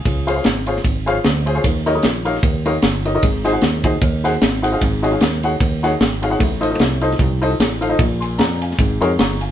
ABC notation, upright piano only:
X:1
M:4/4
L:1/16
Q:"Swing" 1/4=151
K:Abmix
V:1 name="Upright piano"
[fa]2 [FAcdf] [FAcdf] z2 [FAcdf] z3 [FAcdf] z3 [FAcda] [FAcdf] | z2 [E=GBde] [EGBde] z2 [EGBdf] z3 [EGBdf] z3 [EGBde] [EGBde] | z2 [EGAce] [EGAcg] z2 [EGAce] z3 [EGAcg] z3 [EGAcg] [EGAcf] | z2 [EGAde] [EGAd] z2 [EGAdg] z3 [EGAdg] z3 [EGAdf] [EGAdg] |
z2 [EF=Ace] [EFAce] z2 [EFAce] z3 [EFAce] z3 [EFAcf] [EFAce] | z2 [ac']2 b2 [fa]4 [EGABd] z [bd']2 [fa]2 |]
V:2 name="Upright piano" clef=bass
D,6 z8 z2 | E,6 z8 z2 | A,,6 z8 z2 | A,,6 z8 z2 |
=A,,6 z8 z2 | B,,6 z2 A,,6 z2 |]